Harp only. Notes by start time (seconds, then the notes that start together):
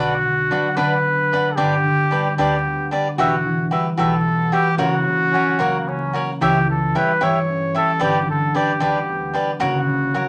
Already playing: D3
0.24 D3
0.50 F#3
0.77 D3
1.06 B3
1.59 D3
1.86 D3
2.12 G3
2.38 D3
2.66 B3
3.19 E3
3.46 E3
3.71 G3
3.98 E3
4.26 B3
4.79 C#3
5.06 C#3
5.34 F#3
5.60 C#3
5.88 A#3
6.41 E3
6.69 E3
6.95 G3
7.22 E3
7.49 C#4
8.01 D3
8.29 D3
8.55 G3
8.80 D3
9.09 B3
9.60 C#3
9.88 C#3
10.15 F#3